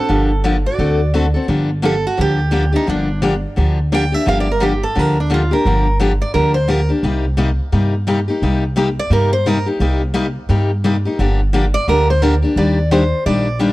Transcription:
Already playing: D4 A4
0.09 G1 D3 F3 A#3 D4 G4
0.44 D3 F3 A#3 D4 G4
0.65 F#4 D5
0.79 D2 D3 A3 C4 F#4 A4
1.14 D3 A3 C4 F#4 A4
1.34 C4 F#4 A4
1.48 G1 D3 F3 A#3 D4 G4
1.82 D3 F3 A#3 D4 G4 A4
2.07 F#4
2.17 D2 D3 F3 A#3 D4 G4
2.51 D3 F3 A#3 D4 G4
2.72 A#3 D4 D#4 G4
2.87 G1 D3 F3 A#3 D4 G4
3.22 D3 F3 A#3 D4 G4
3.56 D2 D3 F3 A#3 D4 G4
3.92 D3 F3 A#3 D4 G4 G5
4.12 A#3 D4 G4 E5
4.26 G1 D3 F3 A#3 D4 G4 F5
4.40 D5
4.51 A#4
4.60 D3 F3 A#3 D4 G4
4.83 A4
4.95 D2 D3 F3 A#3 D4 G4 A#4
5.20 D4
5.30 D3 F3 A#3 D4 G4
5.34 F4
5.51 A#3 D4 G4 A#4
5.65 G1 D3 F3 A#3 D4 G4
6.00 D3 F3 A#3 D4 G4
6.21 D5
6.34 D2 D3 F3 A#3 D4 G4 A#4
6.54 C5
6.68 D3 F3 A#3 D4 G4 A#4
6.89 A#3 D4 G4
7.03 C2 C3 G3 A#3 D#4 G4
7.37 C3 G3 A#3 D#4 G4
7.72 G2 C3 G3 A#3 D#4 G4
8.07 C3 G3 A#3 D#4 G4
8.28 A#3 D#4 G4
8.42 C2 C3 G3 A#3 D#4 G4
8.76 C3 G3 A#3 D#4 G4
8.99 D5
9.10 G2 C3 G3 A#3 D#4 G4 A#4
9.33 C5
9.46 C3 G3 A#3 D#4 G4 A#4
9.66 A#3 D#4 G4
9.80 C2 C3 G3 A#3 D#4 G4
10.14 C3 G3 A#3 D#4 G4
10.49 G2 C3 G3 A#3 D#4 G4
10.84 C3 G3 A#3 D#4 G4
11.05 A#3 D#4 G4
11.19 G1 D3 F3 A#3 D4 G4
11.53 D3 F3 A#3 D4 G4
11.74 D5
11.88 D2 D3 F3 A#3 D4 G4 A#4
12.10 C5
12.22 D3 F3 A#3 D4 G4 A#4
12.42 A#3 D4 G4
12.56 D#2 D#3 G3 A#3 D4 G4 D5
12.91 D#3 G3 A#3 D4 G4 C5
13.26 A#1 D#3 G3 A#3 D4 G4 D5
13.59 D#3 G3 A#3 D4 G4

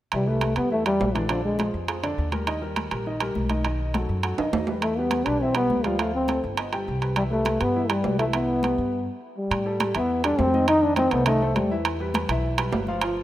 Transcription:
0.12 C2 E3 G3 E4 E5, high conga, high timbale
0.26 G3 A3 G4 B4, high conga
0.41 high conga, high timbale
0.56 E2 G3 B3 G4 B4, high conga, high timbale
0.71 E3 A3 E4 E5, high conga
0.85 G3 G4 B4, high conga, high timbale
1.00 A#1, high conga, low timbale
1.15 D3 E3 D4 D5, high conga, high timbale
1.29 D3 F3 D4 D5, high timbale
1.44 G#3, high conga
1.59 F3 F4 G#4, high conga, high timbale
1.74 F2
1.88 F3 F4 G#4, high conga, high timbale
2.03 D3 D4 D5, high conga, high timbale
2.18 D#2, high conga
2.32 G3 G4 A#4, high conga, high timbale
2.47 D#3 D#4 D#5, high conga, high timbale
2.62 G3 G4 A#4, high conga
2.76 high conga, high timbale
2.91 A#1 G3 G4 A#4, high conga, high timbale
3.06 D#3 D#4 D#5, high conga
3.20 G3 G4 A#4, high conga, high timbale
3.35 B1, high conga
3.49 D#3 D#4 D#5, high conga, high timbale
3.65 D#3 D#4 D#5, high timbale
3.79 high conga
3.94 F#3 F#4 A4, high conga, high timbale
4.09 F#2
4.23 F#3 F#4 A4, high conga, high timbale
4.38 F#2 D#3 D#4 D#5, high conga, high timbale
4.53 E2, low timbale
4.67 G3 G4 B4, high conga, low timbale
4.82 E3 A3 E4 E5, high conga, high timbale
4.97 G3 B3 G4 B4, high conga
5.11 high conga, high timbale
5.26 B1 G3 D4 G4 B4, high conga, high timbale
5.41 E3 C4 E4 E5, high conga
5.55 G3 B3 G4 B4, high conga, high timbale
5.70 D2, high conga
5.84 F3 G3 F4 F5, high conga, high timbale
5.99 F3 A3 F4 F5, high conga, high timbale
6.14 C4, high conga
6.28 A3 A4 C5, high conga, high timbale
6.44 G1
6.57 B3 B4 D#5, high conga, high timbale
6.73 G3 G4 G5, high conga, high timbale
6.88 C2, high conga
7.02 G3 G4 B4, high timbale
7.16 E3 G3 E4 E5, high conga, high timbale
7.31 G3 A3 G4 B4, high conga
7.45 high conga, high timbale
7.60 G2 G3 B3 G4 B4, high conga, high timbale
7.75 E3 E4 E5, high conga
7.90 G3 G4 B4, high conga, high timbale
8.04 C2, high conga, low timbale
8.19 E3 A3 E4 E5, high conga, high timbale
8.33 E3 B3 E4 E5, high conga, high timbale
8.49 high conga
8.63 G3 G4 B4, high conga, high timbale
8.78 G2
9.38 G3
9.51 A2, high conga, high timbale
9.65 G3 G4 A4, high conga
9.80 G3 G4 A4, high conga, high timbale
9.95 E2 E3 B3 E4 E5, high timbale
10.09 high conga
10.24 G3 D4 G4 A4, high conga, high timbale
10.39 F2 C4, high conga, low timbale
10.54 D#3 D#4 D#5, high conga
10.68 D#3 D#4 D#5, high timbale
10.82 D4, high conga
10.96 D#3 C4 D#4 D#5, high conga, high timbale
11.11 C2 A3 B3 A4 C5, high conga, high timbale
11.26 D#3 A3 D#4 D#5, high conga, low conga, high timbale
11.41 A3 A4 C5, high conga
11.55 E2 G3, high conga, high timbale
11.71 E3 E4 E5
11.85 high conga, high timbale
12.00 G3 G4 B4, high conga
12.14 G3 G4 B4, high conga, high timbale
12.29 B1 E3 E4 E5, high timbale
12.43 high conga
12.57 G3 G4 B4, high conga, high timbale
12.72 G1, high conga, low timbale
12.87 F3 F4 F5, high conga
13.01 F3 F4 F5, high conga, high timbale
13.17 high conga

